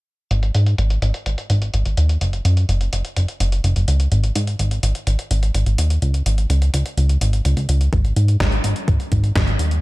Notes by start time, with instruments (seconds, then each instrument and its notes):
0.31 analog synth bass G#1, closed hi-hat
0.43 closed hi-hat
0.55 analog synth bass G#2, closed hi-hat
0.66 closed hi-hat
0.78 analog synth bass G#1, closed hi-hat
0.90 closed hi-hat
1.02 analog synth bass G#1, closed hi-hat
1.14 closed hi-hat
1.26 analog synth bass G#1, closed hi-hat
1.38 closed hi-hat
1.50 analog synth bass G#1, closed hi-hat
1.62 closed hi-hat
1.74 analog synth bass G#1, closed hi-hat
1.86 analog synth bass G#1, closed hi-hat
1.97 analog synth bass D#2, closed hi-hat
2.09 closed hi-hat
2.21 analog synth bass F#1, closed hi-hat
2.33 closed hi-hat
2.45 analog synth bass F#2, closed hi-hat
2.57 closed hi-hat
2.69 analog synth bass F#1, closed hi-hat
2.81 closed hi-hat
2.93 analog synth bass F#1, closed hi-hat
3.05 closed hi-hat
3.16 analog synth bass F#1, closed hi-hat
3.28 closed hi-hat
3.40 analog synth bass F#1, closed hi-hat
3.52 closed hi-hat
3.64 analog synth bass F#1, closed hi-hat
3.76 analog synth bass F#1, closed hi-hat
3.88 analog synth bass C#2, closed hi-hat
4.00 closed hi-hat
4.12 analog synth bass G#1, closed hi-hat
4.24 closed hi-hat
4.36 analog synth bass G#2, closed hi-hat
4.47 closed hi-hat
4.59 analog synth bass G#1, closed hi-hat
4.71 closed hi-hat
4.83 analog synth bass G#1, closed hi-hat
4.95 closed hi-hat
5.07 analog synth bass G#1, closed hi-hat
5.19 closed hi-hat
5.31 analog synth bass G#1, closed hi-hat
5.43 closed hi-hat
5.55 analog synth bass G#1, closed hi-hat
5.66 analog synth bass G#1, closed hi-hat
5.78 analog synth bass D#2, closed hi-hat
5.90 closed hi-hat
6.02 analog synth bass C#2, closed hi-hat
6.14 closed hi-hat
6.26 analog synth bass G#1, closed hi-hat
6.38 closed hi-hat
6.50 analog synth bass C#2, closed hi-hat
6.62 closed hi-hat
6.74 analog synth bass C#2, closed hi-hat
6.86 closed hi-hat
6.97 analog synth bass C#2, closed hi-hat
7.09 closed hi-hat
7.21 analog synth bass G#1, closed hi-hat
7.33 closed hi-hat
7.45 analog synth bass C#2, closed hi-hat
7.57 analog synth bass C#2, closed hi-hat
7.69 analog synth bass C#2, closed hi-hat
7.81 closed hi-hat
7.93 analog synth bass G#1, kick, closed hi-hat
8.05 closed hi-hat
8.16 analog synth bass G#2, closed hi-hat
8.28 closed hi-hat
8.40 analog synth bass G#1, kick, snare, closed hi-hat
8.52 closed hi-hat
8.64 analog synth bass G#1, closed hi-hat
8.76 closed hi-hat
8.88 analog synth bass G#1, kick, closed hi-hat
9.00 closed hi-hat
9.12 analog synth bass G#1, kick, closed hi-hat
9.24 closed hi-hat
9.36 analog synth bass G#1, kick, snare, closed hi-hat
9.47 analog synth bass G#1, closed hi-hat
9.59 analog synth bass D#2, closed hi-hat
9.71 closed hi-hat